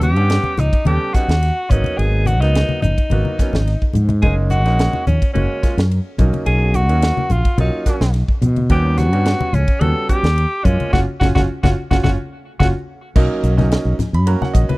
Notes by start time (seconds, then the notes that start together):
Already playing: D#2
0.01 G4, hi-hat pedal, ride, high conga
0.16 G2 G3 B3 C#4 F#5, ride
0.30 snare, ride
0.44 high conga
0.57 C#2 C#4 D#4, hi-hat pedal, ride, low conga
0.73 kick, ride
0.85 D#2 G3 B3 C#4 G4 A4, ride, high conga
1.14 G3 B3 C#4 D#4 F#4, muted fretless electric bass stroke, kick, snare, hi-hat pedal, ride
1.28 D#2 C#4, snare, ride
1.43 snare, ride
1.70 G#1 F#3 A#3 B3 C#4 D#4, kick, hi-hat pedal, ride, low conga
1.84 ride, high conga
1.97 G#1 G#4, ride
2.26 F#4, hi-hat pedal, ride, high conga
2.40 C#2 F#3 A#3 B3 D#4, snare, ride
2.55 snare, ride
2.69 high conga
2.82 F#1 B3 C#4 D#4, hi-hat pedal, ride, low conga
2.98 kick, ride
3.10 G#1 F#3 A#3 B3 F#4, ride, high conga
3.25 high conga
3.39 F#3 A#3 B3 C#4, muted fretless electric bass stroke, kick, snare, hi-hat pedal, ride
3.53 G#1 B3 C#4, snare, low conga
3.67 snare, ride
3.82 kick
3.93 G#2, hi-hat pedal, ride, low conga
4.09 ride, high conga
4.22 F#1 G#3 A#3 C#4 D#4 G#4, kick, ride
4.50 F#4, hi-hat pedal, ride, high conga
4.65 A#1 G#3 A#3 C#4 D#4, snare, ride
4.79 snare, ride
4.93 high conga
5.06 D#2 C#4 F4, hi-hat pedal, ride, low conga
5.22 kick, ride
5.33 F#1 G#3 A#3 C#4 F#4, ride, high conga
5.62 G#3 A#3 C#4 F4, muted fretless electric bass stroke, kick, snare, hi-hat pedal, ride
5.77 F#2 C#4 F#4, snare, ride
5.91 ride
6.18 B1 F#3 A#3 C#4 D#4, kick, hi-hat pedal, ride, low conga
6.33 ride, high conga
6.46 B1 G#4, ride
6.74 F#4, hi-hat pedal, ride, high conga
6.89 D#2 F#3 A#3 C#4 F#4, ride
7.02 snare, ride
7.17 high conga
7.30 A#1 C#4 F4 F#4, hi-hat pedal, ride, low conga
7.45 kick, ride
7.57 B1 F#3 A#3 C#4 D#4 F4, ride, high conga
7.86 F#3 A#3 C#4 F#4, muted fretless electric bass stroke, kick, snare, hi-hat pedal, ride
8.00 B1 C#4 D#4, snare
8.14 snare, ride
8.28 kick
8.41 B2, hi-hat pedal, ride, low conga
8.56 ride, high conga
8.70 D#2 G3 B3 C#4 F#4 G4, kick, ride
8.98 F#4, snare, hi-hat pedal, ride, high conga
9.12 G2 G3 B3 C#4 F#4, ride
9.26 snare, ride
9.41 high conga
9.53 C#2 C#4 A4, hi-hat pedal, ride, low conga
9.68 kick, ride
9.81 D#2 G3 B3 C#4 F#4 A4, ride, high conga
10.08 G3 B3 C#4 F#4 G4, muted fretless electric bass stroke, kick, hi-hat pedal, ride
10.23 D#2 C#4 F#4, snare, ride
10.38 ride
10.64 F#2 G#3 A#3 C#4 F4, kick, hi-hat pedal, ride, low conga
10.80 ride, high conga
10.93 F#1 C#4 F4 F#4, kick, snare, high conga
11.20 F#1 C#4 F4 F#4, kick, snare, high conga
11.35 F#1 C#4 F4 F#4, kick, snare, high conga
11.63 F#1 C#4 F4 F#4, kick, snare, high conga
11.91 F#1 C#4 F4 F#4, kick, snare, high conga
12.03 F#1 C#4 F4 F#4, kick, snare, high conga
12.59 F#1 C#4 F4 F#4, kick, snare, high conga
13.16 B1 F#3 A#3 C#4 D#4, kick, crash
13.43 B1, hi-hat pedal, ride
13.57 F#3 A#3 C#4 D#4, snare, ride, high conga
13.72 snare, ride
13.85 B1
13.98 C#4 D#4, muted fretless electric bass stroke, snare, hi-hat pedal, ride, low conga
14.13 F#2 B5, ride
14.26 F#3 A#3 C#4 F#4 A#5, ride
14.41 F#5, muted fretless electric bass stroke, snare, high conga
14.54 A#1 D#5, kick, hi-hat pedal, ride
14.69 B4, ride, high conga